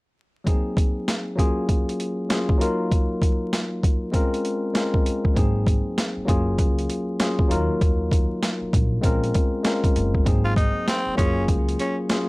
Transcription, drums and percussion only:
0.47 kick loud
0.47 closed hi-hat medium
0.77 kick loud
0.77 closed hi-hat medium
1.08 snare loud
1.08 closed hi-hat loud
1.39 kick medium
1.39 closed hi-hat medium
1.69 kick medium
1.69 closed hi-hat medium
1.89 closed hi-hat medium
2.00 closed hi-hat medium
2.30 snare loud
2.30 closed hi-hat medium
2.49 kick medium
2.61 closed hi-hat medium
2.92 kick loud
2.92 closed hi-hat medium
3.22 kick loud
3.22 closed hi-hat medium
3.53 snare loud
3.53 closed hi-hat loud
3.83 kick medium
3.83 closed hi-hat medium
4.14 kick medium
4.14 closed hi-hat medium
4.34 closed hi-hat medium
4.45 closed hi-hat medium
4.75 snare loud
4.75 closed hi-hat medium
4.94 kick medium
5.06 closed hi-hat medium
5.25 kick medium
5.36 kick loud
5.36 closed hi-hat medium
5.67 kick loud
5.67 closed hi-hat medium
5.98 snare loud
5.98 closed hi-hat loud
6.28 kick medium
6.28 closed hi-hat medium
6.58 kick medium
6.58 closed hi-hat medium
6.79 closed hi-hat medium
6.90 closed hi-hat medium
7.20 snare loud
7.20 closed hi-hat medium
7.39 kick medium
7.51 closed hi-hat medium
7.81 kick loud
7.81 closed hi-hat medium
8.11 kick loud
8.11 closed hi-hat medium
8.43 snare loud
8.43 closed hi-hat loud
8.73 kick medium
8.73 closed hi-hat medium
9.03 kick medium
9.03 closed hi-hat medium
9.24 closed hi-hat medium
9.34 kick medium
9.34 closed hi-hat medium
9.64 snare loud
9.64 closed hi-hat medium
9.84 kick medium
9.84 closed hi-hat medium
9.96 closed hi-hat medium
10.14 kick medium
10.26 kick loud
10.26 closed hi-hat medium
10.56 kick loud
10.56 closed hi-hat medium
10.88 snare loud
10.88 closed hi-hat loud
11.18 kick medium
11.18 closed hi-hat medium
11.48 kick medium
11.48 closed hi-hat medium
11.69 closed hi-hat medium
11.79 closed hi-hat medium
12.10 snare loud
12.10 closed hi-hat medium

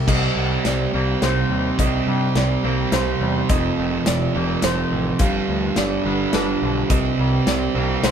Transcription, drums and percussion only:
0.08 kick medium
0.08 crash medium
0.65 snare medium
0.65 closed hi-hat soft
1.22 snare medium
1.22 closed hi-hat soft
1.79 kick medium
1.79 closed hi-hat medium
2.36 snare medium
2.36 closed hi-hat soft
2.92 snare medium
2.92 closed hi-hat medium
3.49 kick medium
3.49 closed hi-hat medium
4.06 snare medium
4.06 closed hi-hat medium
4.62 snare medium
4.62 closed hi-hat medium
5.19 kick medium
5.19 closed hi-hat medium
5.76 snare medium
5.76 closed hi-hat soft
6.33 snare medium
6.33 closed hi-hat soft
6.90 kick medium
6.90 closed hi-hat soft
7.47 snare medium
7.47 closed hi-hat soft
8.04 snare medium
8.04 closed hi-hat medium

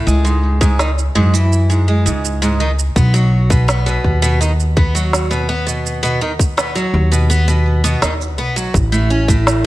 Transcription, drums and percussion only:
0.08 shaker medium
0.26 shaker soft
0.61 kick loud
0.61 shaker medium
0.79 snare medium
0.79 shaker medium
0.98 shaker soft
1.35 shaker medium
1.53 shaker soft
1.71 shaker soft
2.07 shaker medium
2.25 shaker medium
2.43 shaker soft
2.79 shaker medium
2.96 kick loud
2.96 shaker medium
3.15 shaker soft
3.50 kick loud
3.50 shaker medium
3.69 snare medium
3.69 shaker soft
3.88 shaker soft
4.04 kick medium
4.24 shaker medium
4.42 shaker medium
4.60 shaker soft
4.77 kick loud
4.96 shaker medium
5.13 snare medium
5.13 shaker medium
5.32 shaker soft
5.68 shaker medium
5.86 shaker soft
6.04 shaker soft
6.39 kick loud
6.39 shaker medium
6.58 snare medium
6.58 shaker soft
6.77 shaker soft
7.13 shaker medium
7.31 shaker soft
7.49 shaker soft
7.85 shaker medium
8.02 snare medium
8.02 shaker medium
8.21 shaker soft
8.57 shaker medium
8.74 kick loud
8.74 shaker medium
8.93 shaker soft
9.28 kick loud
9.28 shaker medium
9.47 snare medium
9.47 shaker soft

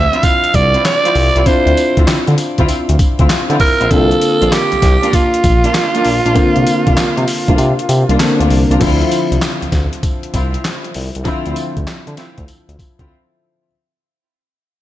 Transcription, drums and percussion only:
0.13 closed hi-hat medium
0.23 kick loud
0.23 closed hi-hat medium
0.23 tambourine medium
0.44 closed hi-hat medium
0.54 kick loud
0.54 closed hi-hat medium
0.54 tambourine medium
0.74 closed hi-hat medium
0.85 snare loud
0.85 clap medium
0.85 closed hi-hat medium
0.85 tambourine medium
1.05 closed hi-hat medium
1.15 open hi-hat medium
1.36 closed hi-hat medium
1.46 kick loud
1.46 closed hi-hat medium
1.46 tambourine medium
1.67 closed hi-hat medium
1.77 closed hi-hat medium
1.77 tambourine medium
1.97 kick medium
1.97 closed hi-hat medium
2.07 snare loud
2.07 clap medium
2.07 closed hi-hat medium
2.07 tambourine medium
2.27 closed hi-hat medium
2.38 closed hi-hat medium
2.38 tambourine medium
2.58 kick medium
2.58 closed hi-hat medium
2.68 closed hi-hat medium
2.68 tambourine medium
2.89 closed hi-hat medium
2.99 kick loud
2.99 closed hi-hat medium
2.99 tambourine medium
3.19 kick loud
3.19 closed hi-hat medium
3.29 snare loud
3.29 clap loud
3.29 closed hi-hat medium
3.29 tambourine medium
3.50 closed hi-hat medium
3.60 kick loud
3.60 open hi-hat medium
3.81 closed hi-hat medium
3.91 kick loud
3.91 closed hi-hat medium
3.91 tambourine medium
4.11 closed hi-hat medium
4.21 closed hi-hat medium
4.21 tambourine medium
4.42 closed hi-hat medium
4.52 snare loud
4.52 clap medium
4.52 closed hi-hat medium
4.52 tambourine medium
4.72 closed hi-hat medium
4.82 kick medium
4.82 snare medium
4.82 closed hi-hat medium
4.82 tambourine medium
5.03 closed hi-hat medium
5.13 kick medium
5.13 closed hi-hat medium
5.13 tambourine medium
5.34 closed hi-hat medium
5.44 kick medium
5.44 closed hi-hat medium
5.44 tambourine medium
5.64 closed hi-hat medium
5.74 snare loud
5.74 clap medium
5.74 closed hi-hat medium
5.74 tambourine medium
5.95 closed hi-hat medium
6.05 open hi-hat medium
6.26 closed hi-hat medium
6.36 kick loud
6.36 closed hi-hat medium
6.36 tambourine medium
6.56 closed hi-hat medium
6.67 closed hi-hat medium
6.67 tambourine medium
6.87 kick loud
6.87 closed hi-hat medium
6.97 snare loud
6.97 clap medium
6.97 closed hi-hat medium
6.97 tambourine medium
7.17 closed hi-hat medium
7.28 open hi-hat medium
7.28 tambourine medium
7.48 kick medium
7.48 closed hi-hat medium
7.58 closed hi-hat medium
7.58 tambourine medium
7.79 closed hi-hat medium
7.89 closed hi-hat medium
7.89 tambourine medium
8.09 closed hi-hat medium
8.19 snare loud
8.19 clap loud
8.19 closed hi-hat medium
8.19 tambourine medium
8.41 closed hi-hat medium
8.50 open hi-hat medium
8.71 closed hi-hat medium
8.81 kick loud
8.81 closed hi-hat medium
8.81 crash medium
8.81 tambourine medium
9.01 closed hi-hat medium
9.12 closed hi-hat medium
9.12 tambourine medium
9.32 closed hi-hat medium
9.42 snare loud
9.42 clap medium
9.42 closed hi-hat medium
9.42 tambourine loud
9.62 closed hi-hat medium
9.72 kick loud
9.72 snare medium
9.72 closed hi-hat medium
9.72 tambourine medium
9.93 closed hi-hat medium
10.03 kick medium
10.03 closed hi-hat medium
10.03 tambourine medium
10.23 closed hi-hat medium
10.34 kick medium
10.34 closed hi-hat medium
10.34 tambourine medium
10.54 closed hi-hat medium
10.64 snare loud
10.64 clap medium
10.64 closed hi-hat medium
10.64 tambourine medium
10.84 closed hi-hat medium
10.94 open hi-hat medium
11.15 closed hi-hat medium
11.25 kick loud
11.25 closed hi-hat medium
11.25 tambourine medium
11.46 closed hi-hat medium
11.56 closed hi-hat medium
11.56 tambourine medium
11.77 kick medium
11.77 closed hi-hat medium
11.87 snare loud
11.87 clap medium
11.87 closed hi-hat medium
11.87 tambourine medium
12.07 closed hi-hat soft
12.17 snare medium
12.17 closed hi-hat medium
12.17 tambourine medium
12.38 kick medium
12.38 closed hi-hat medium
12.48 closed hi-hat medium
12.48 tambourine medium
12.69 closed hi-hat medium
12.79 kick medium
12.79 closed hi-hat medium
12.79 tambourine medium
12.99 kick medium
12.99 closed hi-hat medium

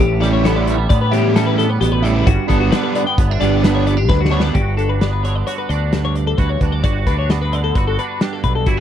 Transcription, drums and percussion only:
0.23 snare soft
0.23 closed hi-hat medium
0.45 snare loud
0.45 closed hi-hat medium
0.67 closed hi-hat medium
0.90 kick loud
0.90 closed hi-hat medium
1.13 snare soft
1.13 closed hi-hat medium
1.36 snare loud
1.36 closed hi-hat medium
1.59 snare soft
1.59 closed hi-hat medium
1.82 snare soft
1.82 closed hi-hat medium
2.05 closed hi-hat medium
2.27 kick loud
2.27 closed hi-hat loud
2.50 kick medium
2.50 closed hi-hat medium
2.72 snare loud
2.72 closed hi-hat loud
2.95 closed hi-hat medium
3.18 kick loud
3.18 closed hi-hat medium
3.41 snare soft
3.41 closed hi-hat medium
3.64 snare loud
3.64 closed hi-hat loud
3.87 closed hi-hat medium
4.10 kick loud
4.10 snare medium
4.25 snare medium
4.40 snare loud
4.55 kick loud
4.55 closed hi-hat medium
4.79 closed hi-hat medium
5.01 snare loud
5.01 closed hi-hat medium
5.25 closed hi-hat medium
5.47 closed hi-hat medium
5.70 closed hi-hat medium
5.93 snare loud
5.93 closed hi-hat medium
6.15 closed hi-hat medium
6.38 kick medium
6.38 snare soft
6.38 closed hi-hat medium
6.61 kick medium
6.61 closed hi-hat medium
6.84 kick loud
6.84 closed hi-hat medium
7.07 kick medium
7.07 snare soft
7.07 closed hi-hat medium
7.30 snare loud
7.30 closed hi-hat medium
7.53 closed hi-hat medium
7.75 kick loud
7.75 closed hi-hat medium
7.99 closed hi-hat medium
8.21 snare loud
8.21 closed hi-hat medium
8.44 kick medium
8.44 closed hi-hat medium
8.66 kick medium
8.66 closed hi-hat medium

